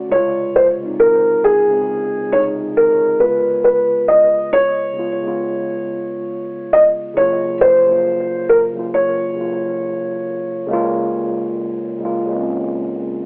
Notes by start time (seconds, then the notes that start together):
Already playing: D3 A3 C#4 F#4
0.09 C#3 G#3 C#5
0.13 C3 F4
0.56 C5
0.79 C#3 G#3
0.83 C4 D#4
1.00 A#4
1.44 G#4
1.67 C#3 G#3
1.71 C4 G#4
2.28 C#3 G#3
2.32 C3 D#4 C#5
2.77 A#4
3.16 C#3 G#3 B4
3.21 B3 F4
3.64 B4
4.08 D#5
4.53 C#5
4.93 C#3 G#3
4.97 B3 F4
5.21 C#3 G#3
5.26 B3 F4
6.73 D#5
7.14 C#3 F#3 C#5
7.18 A#3 F4
7.61 C5
7.84 C#3 F#3
7.89 A#3 F4
8.49 A#4
8.72 C#3 F#3
8.77 A#3 F4
8.94 C#5
9.35 C#3 F#3 A#3
9.41 F4
10.67 C#3 G#3
10.71 A#3 F4
11.98 C#3 G#3
12.03 A#3 F4
12.26 C#3 G#3
12.30 A#3 C4
12.39 C#4